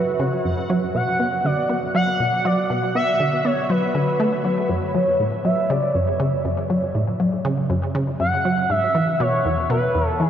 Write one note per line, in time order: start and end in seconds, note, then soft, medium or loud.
0.00 0.12 F#3 medium
0.00 4.71 F#4 medium
0.00 0.22 B4 medium
0.00 4.71 F#5 medium
0.20 0.44 C#3 loud
0.20 0.58 C#5 medium
0.45 0.62 F#2 medium
0.70 0.93 F#3 loud
0.95 1.05 B2 medium
0.95 1.47 F#5 loud
1.20 1.30 B3 medium
1.45 1.62 D3 medium
1.45 1.70 D5 medium
1.70 1.87 B3 medium
1.95 2.19 F#3 medium
1.95 2.46 F#5 loud
2.20 2.37 B2 medium
2.45 2.69 F#3 loud
2.45 2.70 D5 medium
2.70 2.80 B2 medium
2.95 3.05 B3 medium
2.95 3.47 E5 loud
3.20 3.37 D3 medium
3.45 3.62 B3 medium
3.45 3.71 C#5 loud
3.70 3.94 F#3 loud
3.70 4.44 B4 medium
3.95 4.05 D3 medium
4.20 4.37 A3 loud
4.45 4.62 F#3 medium
4.45 4.71 B4 medium
4.70 4.80 F#2 medium
4.70 5.44 C#5 loud
4.95 5.05 F#3 medium
5.20 5.37 A2 medium
5.44 5.62 F#3 medium
5.44 5.71 E5 loud
5.69 5.94 C#3 loud
5.69 5.96 D5 loud
5.94 6.12 F#2 medium
5.94 6.45 C#5 medium
6.20 6.44 C#3 loud
6.45 6.55 F#2 medium
6.70 6.80 F#3 medium
6.95 7.12 A2 medium
7.20 7.37 F#3 medium
7.45 7.69 C#3 loud
7.70 7.87 F#2 medium
7.95 8.19 C#3 medium
8.20 8.30 F#2 medium
8.20 8.72 F#5 loud
8.45 8.55 F#3 medium
8.70 8.87 G#2 medium
8.70 9.22 E5 loud
8.95 9.12 E3 medium
9.20 9.44 B2 loud
9.20 9.70 C#5 loud
9.45 9.62 E2 medium
9.70 9.94 B2 loud
9.70 10.07 B4 medium
9.95 10.05 E2 medium
10.07 10.22 A4 medium
10.20 10.30 E3 medium
10.20 10.30 G#4 medium